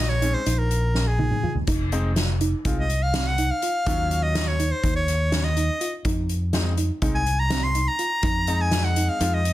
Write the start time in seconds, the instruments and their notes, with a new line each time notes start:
Already playing: fingered electric bass A#1, synth arpeggio sound F4, soprano saxophone D#5
0.09 soprano saxophone C#5
0.22 grand piano G#3 C4 C#4, synth arpeggio sound D#4, closed hi-hat
0.34 soprano saxophone C5
0.46 fingered electric bass A#1, synth arpeggio sound D#4, closed hi-hat
0.58 soprano saxophone A#4
0.71 closed hi-hat
0.94 synth arpeggio sound C#4, snare
1.07 soprano saxophone G#4
1.19 synth arpeggio sound D#4, high tom
1.31 mid tom
1.43 synth arpeggio sound F4, mid tom
1.55 floor tom
1.67 fingered electric bass F1, synth arpeggio sound D#4, kick, closed hi-hat, crash
1.92 grand piano G#3 C4 D#4, closed hi-hat
2.16 synth arpeggio sound F4, snare, closed hi-hat
2.41 synth arpeggio sound D#4, closed hi-hat
2.65 fingered electric bass C2, grand piano G#3 C4 F4, synth arpeggio sound D#4, kick, closed hi-hat
2.79 soprano saxophone D#5
2.90 closed hi-hat
3.03 soprano saxophone F5
3.14 synth arpeggio sound C4, snare, closed hi-hat
3.27 soprano saxophone F#5
3.38 synth arpeggio sound D#4, closed hi-hat
3.51 soprano saxophone F5
3.62 synth arpeggio sound F4, closed hi-hat
3.86 fingered electric bass D#2, grand piano F#3 C#4 F4, synth arpeggio sound D#4, kick, closed hi-hat
4.11 closed hi-hat
4.23 soprano saxophone D#5
4.35 synth arpeggio sound F4, snare, closed hi-hat
4.47 soprano saxophone C#5
4.59 synth arpeggio sound D#4, closed hi-hat
4.71 soprano saxophone C5
4.83 fingered electric bass D#2, synth arpeggio sound D#4, kick, closed hi-hat
4.96 soprano saxophone C#5
5.08 snare, closed hi-hat
5.32 synth arpeggio sound C#4, snare, closed hi-hat
5.44 soprano saxophone D#5
5.57 synth arpeggio sound D#4, closed hi-hat
5.81 synth arpeggio sound F4, closed hi-hat
6.05 fingered electric bass F2, synth arpeggio sound D#4, kick, closed hi-hat
6.29 closed hi-hat
6.53 grand piano G#3 C4 D#4, synth arpeggio sound F4, snare, closed hi-hat
6.77 synth arpeggio sound D#4, closed hi-hat
7.02 fingered electric bass C2, grand piano G#3 C4 D#4, synth arpeggio sound D#4, kick, closed hi-hat
7.15 soprano saxophone G#5
7.26 closed hi-hat
7.39 soprano saxophone A#5
7.50 synth arpeggio sound C4, snare, closed hi-hat
7.63 soprano saxophone C6
7.75 synth arpeggio sound D#4, closed hi-hat
7.88 soprano saxophone A#5
7.99 synth arpeggio sound F4, closed hi-hat
8.23 fingered electric bass F2, synth arpeggio sound D#4, kick, closed hi-hat
8.47 grand piano G#3 C4 D#4, snare, closed hi-hat
8.61 soprano saxophone G#5
8.71 synth arpeggio sound F4, snare, closed hi-hat
8.84 soprano saxophone F#5
8.96 synth arpeggio sound D#4, closed hi-hat
9.09 soprano saxophone F5
9.20 fingered electric bass F2, grand piano G#3 C4 F4, synth arpeggio sound D#4, closed hi-hat
9.34 soprano saxophone D#5
9.45 closed hi-hat